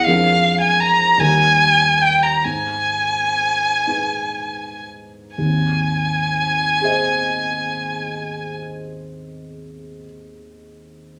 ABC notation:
X:1
M:6/8
L:1/16
Q:3/8=41
K:D#phr
V:1 name="Violin"
^e3 g a2 g4 =g a | g8- g2 z2 | g12- | g12 |]
V:2 name="Grand piano"
z12 | z12 | z6 [G^Bd]6- | [G^Bd]12 |]
V:3 name="Grand piano" clef=bass
[^E,,G,=DA]6 [^D,,=G,^DA]6 | G,,6 [G,DB]6 | [G,,,D,,]12- | [G,,,D,,]12 |]